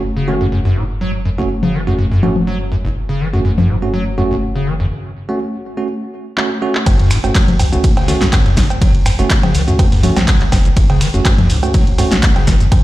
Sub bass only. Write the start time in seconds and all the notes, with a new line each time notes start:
Already playing: F#1
6.86 F#1
7.24 F#1
7.60 C#2
8.21 B1
8.46 F#1
8.81 F#1
9.19 F#1
9.55 C#2
10.17 B1
10.41 F#1
10.77 F#1
11.14 F#1
11.50 C#2
12.12 B1
12.36 F#1
12.72 F#1